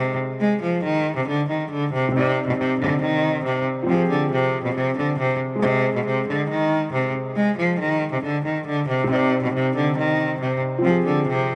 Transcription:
0.00 0.16 C3 medium
0.00 2.07 G#3 medium
0.00 2.09 G#4 medium
0.00 2.11 C5 medium
0.00 2.12 D#5 medium
0.40 0.59 G#3 medium
0.62 0.81 F3 medium
0.84 1.14 D#3 loud
1.16 1.26 C3 medium
1.27 1.46 D3 medium
1.49 1.68 D#3 medium
1.71 1.90 D3 medium
1.92 2.12 C3 medium
2.09 3.82 C3 medium
2.09 3.84 C4 medium
2.14 2.45 C3 loud
2.14 3.86 D#4 medium
2.20 3.87 D5 medium
2.47 2.56 B2 medium
2.58 2.77 C3 medium
2.80 2.99 D3 medium
3.01 3.42 D#3 medium
3.45 3.64 C3 medium
3.83 5.56 F3 medium
3.83 5.58 C4 medium
3.88 4.07 F3 medium
3.88 5.60 G4 medium
3.94 5.58 G#4 medium
4.10 4.29 D3 medium
4.32 4.62 C3 loud
4.64 4.74 B2 medium
4.75 4.94 C3 medium
4.97 5.16 D3 medium
5.18 5.38 C3 loud
5.56 9.03 G#3 medium
5.56 9.04 G#4 medium
5.62 5.93 C3 loud
5.62 9.06 C5 medium
5.67 9.08 D#5 medium
5.95 6.04 B2 medium
6.05 6.25 C3 medium
6.28 6.47 D3 medium
6.49 6.90 D#3 loud
6.92 7.12 C3 medium
7.36 7.55 G#3 medium
7.57 7.77 F3 medium
7.79 8.10 D#3 loud
8.12 8.22 C3 medium
8.23 8.42 D3 medium
8.44 8.64 D#3 medium
8.66 8.85 D3 medium
8.88 9.07 C3 medium
9.04 10.77 C3 medium
9.04 10.79 C4 medium
9.10 9.41 C3 loud
9.10 10.81 D#4 medium
9.15 10.83 D5 medium
9.43 9.52 B2 medium
9.53 9.72 C3 medium
9.75 9.94 D3 medium
9.97 10.38 D#3 medium
10.40 10.59 C3 medium
10.78 11.55 F3 medium
10.78 11.55 C4 medium
10.84 11.03 F3 loud
10.84 11.55 G4 medium
10.90 11.55 G#4 medium
11.05 11.25 D3 medium
11.27 11.55 C3 loud

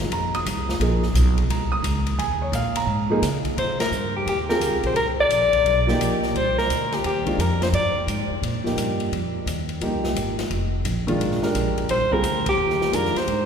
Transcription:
0.10 0.44 F1 medium
0.10 0.33 A#5 medium
0.10 ride medium
0.35 0.46 D#6 loud
0.35 ride soft
0.45 0.79 C2 medium
0.45 hi-hat pedal medium
0.45 ride medium
0.69 snare medium
0.79 1.13 A#1 medium
0.79 1.00 F3 medium
0.79 1.00 A#3 medium
0.79 1.01 D#4 medium
0.79 1.01 G#4 medium
0.79 ride medium
1.03 snare soft
1.14 1.47 B1 loud
1.14 hi-hat pedal medium
1.14 ride medium
1.38 ride soft
1.48 1.82 C2 medium
1.48 1.72 A#5 medium
1.48 ride medium
1.72 1.79 D#6 loud
1.83 2.17 C#2 medium
1.83 hi-hat pedal medium
1.83 ride medium
2.06 ride medium
2.18 2.51 D#2 medium
2.18 2.40 G#5 medium
2.18 ride medium
2.42 2.53 C#5 medium
2.52 2.86 A#2 loud
2.52 2.76 F5 medium
2.52 hi-hat pedal medium
2.52 ride medium
2.76 3.08 A#5 loud
2.76 ride medium
2.86 3.21 G#2 medium
3.10 3.21 F3 medium
3.10 3.21 A#3 medium
3.10 3.22 D#4 medium
3.10 3.22 G#4 medium
3.22 3.56 C#3 medium
3.22 snare soft
3.22 hi-hat pedal medium
3.22 ride medium
3.45 kick medium
3.45 ride soft
3.57 3.91 C3 medium
3.57 3.79 C5 medium
3.57 ride medium
3.80 4.12 A#4 medium
3.80 snare medium
3.80 ride medium
3.91 4.25 G2 medium
3.91 hi-hat pedal medium
4.16 4.27 G4 medium
4.26 4.60 D#2 medium
4.26 4.39 G4 medium
4.26 ride medium
4.49 4.93 C4 medium
4.49 4.94 F4 medium
4.49 4.93 G4 medium
4.49 4.94 G#4 medium
4.49 4.82 A#4 medium
4.49 snare medium
4.60 4.72 D2 medium
4.60 hi-hat pedal medium
4.60 ride medium
4.72 4.82 C2 medium
4.83 4.93 A#1 medium
4.83 4.96 C5 medium
4.83 ride soft
4.94 5.28 C2 medium
4.94 5.06 A#4 medium
4.94 ride medium
5.20 6.19 D5 loud
5.29 5.64 A#1 medium
5.29 hi-hat pedal medium
5.29 ride medium
5.53 kick soft
5.53 ride soft
5.65 5.98 B1 medium
5.65 ride medium
5.87 6.32 F3 medium
5.87 6.32 A#3 medium
5.87 6.33 D#4 medium
5.87 6.33 G4 medium
5.87 snare soft
5.99 6.33 A#1 medium
5.99 hi-hat pedal medium
5.99 ride medium
6.23 snare soft
6.35 6.68 C2 medium
6.35 6.57 C5 medium
6.35 ride medium
6.58 6.96 A#4 medium
6.58 snare soft
6.70 7.03 D2 medium
6.70 hi-hat pedal medium
6.70 ride medium
6.92 7.05 G4 medium
6.92 snare soft
6.92 ride soft
7.04 7.38 D#2 medium
7.04 7.42 G4 medium
7.04 ride medium
7.25 7.37 D#3 medium
7.25 7.37 G#3 medium
7.25 7.37 D4 medium
7.25 7.38 F4 medium
7.25 kick soft
7.25 ride soft
7.38 7.72 F2 medium
7.38 7.62 A#4 medium
7.38 hi-hat pedal medium
7.38 ride medium
7.62 7.68 C5 medium
7.62 snare medium
7.62 ride soft
7.73 7.94 G2 medium
7.73 8.06 D5 medium
7.73 ride medium
7.96 muted upright bass stroke soft
8.07 8.28 G#2 medium
8.07 hi-hat pedal medium
8.07 ride medium
8.30 muted upright bass stroke soft
8.42 8.76 A#2 medium
8.42 ride medium
8.64 9.09 F3 medium
8.64 9.10 A#3 medium
8.64 9.10 D#4 medium
8.64 9.10 G4 medium
8.64 snare soft
8.77 9.11 G2 medium
8.77 hi-hat pedal medium
8.77 ride medium
9.00 ride soft
9.12 9.45 F2 medium
9.12 ride medium
9.46 9.80 D#2 medium
9.46 hi-hat pedal medium
9.46 ride medium
9.69 ride soft
9.81 10.14 C2 medium
9.81 10.34 F3 medium
9.81 10.34 A#3 medium
9.81 10.34 D#4 medium
9.81 10.35 G4 medium
9.81 ride medium
10.04 snare soft
10.15 10.49 G#1 medium
10.15 hi-hat pedal medium
10.15 ride medium
10.39 snare soft
10.39 ride soft
10.50 10.84 F1 medium
10.50 ride medium
10.85 11.19 A#1 medium
10.85 hi-hat pedal medium
10.85 ride medium
11.07 11.40 D#3 medium
11.07 11.40 G#3 medium
11.07 11.40 D4 medium
11.07 11.41 F4 medium
11.07 ride soft
11.20 11.53 G#1 medium
11.20 ride medium
11.32 snare soft
11.41 11.86 G#3 medium
11.41 11.86 D4 medium
11.41 11.87 G4 medium
11.41 11.87 A#4 medium
11.41 snare soft
11.55 11.88 A#1 medium
11.55 hi-hat pedal medium
11.55 ride medium
11.78 ride soft
11.89 12.22 C2 medium
11.89 12.14 C5 loud
11.89 ride medium
12.12 12.23 G3 medium
12.12 12.23 C4 medium
12.12 12.23 F4 medium
12.12 12.23 G#4 medium
12.12 12.47 A#4 loud
12.12 kick medium
12.23 12.57 D2 medium
12.23 hi-hat pedal medium
12.23 ride medium
12.46 12.96 G4 medium
12.46 kick medium
12.46 ride medium
12.58 12.92 D#2 medium
12.70 snare soft
12.81 snare soft
12.92 13.14 F2 medium
12.92 13.13 D#3 medium
12.92 13.13 G#3 medium
12.92 13.14 D4 medium
12.92 13.14 F4 medium
12.92 13.19 A#4 medium
12.92 hi-hat pedal medium
12.92 ride medium
13.05 snare soft
13.15 13.46 C5 loud
13.15 muted upright bass stroke soft
13.15 snare soft
13.15 ride soft
13.28 13.46 G#2 medium
13.28 ride medium

